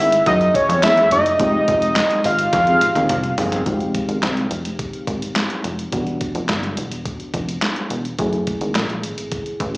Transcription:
Already playing: analog synth bass G#1, fm electric piano A3 C#4 E4 G#4, analog synth lead E5
0.12 closed hi-hat
0.26 analog synth bass F#2, analog synth lead D#5, kick, closed hi-hat
0.41 closed hi-hat
0.55 analog synth lead C#5, kick, closed hi-hat
0.69 analog synth bass F2, closed hi-hat
0.83 analog synth bass E2, fm electric piano A3 C#4 E4 G#4, analog synth lead E5, snare, clap, closed hi-hat
0.97 closed hi-hat
1.11 analog synth bass F#1, analog synth lead D#5, closed hi-hat
1.26 closed hi-hat
1.39 analog synth bass F1, fm electric piano G#3 C4 D#4 G4, kick, closed hi-hat
1.68 analog synth bass F1, kick, closed hi-hat
1.82 closed hi-hat
1.96 snare, clap, closed hi-hat
2.10 closed hi-hat
2.24 analog synth bass G#1, analog synth lead F5, open hi-hat
2.39 closed hi-hat
2.53 analog synth bass F2, kick, snare, closed hi-hat
2.67 analog polysynth D#3 C4 G#4, closed hi-hat
2.81 closed hi-hat, high tom
2.95 analog synth bass D#2, analog polysynth D#3 C4 G#4, closed hi-hat, high tom
3.09 analog synth bass C2, closed hi-hat, mid tom
3.24 closed hi-hat
3.37 analog synth bass G1, analog polysynth D#3 C4 G#4, floor tom, open hi-hat
3.52 closed hi-hat, floor tom
3.65 analog synth bass F1, fm electric piano G#3 C4 D#4 F#4, kick, closed hi-hat
3.74 fm electric piano G4
3.80 closed hi-hat
3.95 kick, closed hi-hat
4.09 analog synth bass G#1, closed hi-hat
4.23 analog synth bass C2, snare, clap, closed hi-hat
4.37 closed hi-hat
4.51 analog synth bass F1, closed hi-hat
4.65 closed hi-hat
4.79 kick, closed hi-hat
4.93 closed hi-hat
5.07 analog synth bass G#1, kick, closed hi-hat
5.22 closed hi-hat
5.36 snare, clap, closed hi-hat
5.50 closed hi-hat
5.64 analog synth bass F1, closed hi-hat
5.79 closed hi-hat
5.92 analog synth bass E1, fm electric piano G3 B3 D4 F#4, kick, closed hi-hat
6.07 closed hi-hat
6.21 kick, closed hi-hat
6.35 analog synth bass F1, closed hi-hat
6.49 analog synth bass G1, snare, clap, closed hi-hat
6.63 closed hi-hat
6.77 analog synth bass E1, closed hi-hat
6.92 closed hi-hat
7.05 kick, closed hi-hat
7.20 closed hi-hat
7.34 analog synth bass F1, kick, closed hi-hat
7.49 closed hi-hat
7.62 snare, clap, closed hi-hat
7.76 closed hi-hat
7.90 analog synth bass E1, closed hi-hat
8.05 closed hi-hat
8.18 analog synth bass F#1, fm electric piano A3 C#4 E4 G#4, kick, closed hi-hat
8.33 closed hi-hat
8.47 kick, closed hi-hat
8.61 analog synth bass G#1, closed hi-hat
8.75 analog synth bass A#1, snare, clap, closed hi-hat
8.90 closed hi-hat
9.03 analog synth bass G#1, closed hi-hat
9.18 closed hi-hat
9.32 kick, closed hi-hat
9.46 closed hi-hat
9.60 analog synth bass A1, kick, closed hi-hat

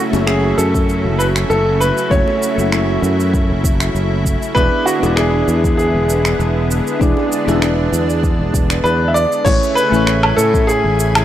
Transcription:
Already playing: analog synth pad C#3 F#3 A3 E4, synth keys A3 C#4 E4 F#4 C#5
0.10 fretless electric bass F#1, synth keys A3 C#4 E4, high bongo, cabasa
0.15 synth keys F#4 C#5
0.27 grand piano G#4, finger snap, cabasa
0.58 fretless electric bass F#2, grand piano A4, cabasa
0.74 kick, cabasa
0.89 cabasa
1.05 fretless electric bass F#1
1.19 grand piano B4, cabasa
1.36 finger snap, cabasa
1.50 fretless electric bass F#1, grand piano A4, cabasa
1.80 grand piano B4, cabasa
1.98 cabasa
2.10 fretless electric bass F#1, synth keys A3 C#4 E4 F#4 C#5, grand piano C#5, kick, cabasa
2.28 high bongo
2.43 cabasa
2.55 fretless electric bass F#1, synth keys A3 C#4 E4, cabasa
2.60 synth keys F#4 E5
2.72 finger snap, cabasa
3.02 fretless electric bass F#2, cabasa
3.20 cabasa
3.34 kick, cabasa
3.50 fretless electric bass F#1
3.64 kick, cabasa
3.80 finger snap, cabasa
3.95 fretless electric bass F#1, cabasa
4.25 kick, cabasa
4.42 cabasa
4.55 fretless electric bass E1, analog synth pad D3 G#3 B3, synth keys B3 D4 E4 G#4 D5, grand piano B4, kick, cabasa
4.86 grand piano F#4, cabasa
5.00 fretless electric bass E1, synth keys B3 D4 E4, high bongo, cabasa
5.04 synth keys G#4 D5
5.16 grand piano G#4, finger snap, cabasa
5.48 fretless electric bass E2, cabasa
5.64 kick, cabasa
5.77 grand piano G#4, cabasa
5.95 fretless electric bass E1
6.10 cabasa
6.25 finger snap, cabasa
6.39 fretless electric bass E1, cabasa
6.71 cabasa
6.87 cabasa
7.00 fretless electric bass E1, synth keys B3 D4 E4 G#4 D5, analog synth pad D4, kick, cabasa
7.17 high bongo
7.32 cabasa
7.45 fretless electric bass E1, synth keys B3 D4 E4, high bongo, cabasa
7.49 synth keys G#4 E5
7.62 finger snap, cabasa
7.92 fretless electric bass E2, cabasa
8.10 cabasa
8.23 kick, cabasa
8.39 fretless electric bass E1
8.54 kick, cabasa
8.70 finger snap, cabasa
8.84 fretless electric bass E2, grand piano B4, cabasa
9.08 grand piano E5
9.14 grand piano D5, cabasa
9.32 cabasa
9.44 fretless electric bass A1, analog synth pad C#3 A3 E4 G#5, synth keys A3 C#4 E4 G#4 C#5, grand piano C#5, kick, crash, cabasa
9.63 cabasa
9.75 grand piano B4, cabasa
9.90 fretless electric bass A1, synth keys A3 C#4 E4
9.94 synth keys C#5 G#5, cabasa
10.07 finger snap, cabasa
10.23 low woodblock
10.36 fretless electric bass A2, grand piano A4, cabasa
10.54 kick, cabasa
10.67 grand piano G#4, cabasa
10.84 fretless electric bass A1
11.00 cabasa
11.15 finger snap, cabasa, low woodblock

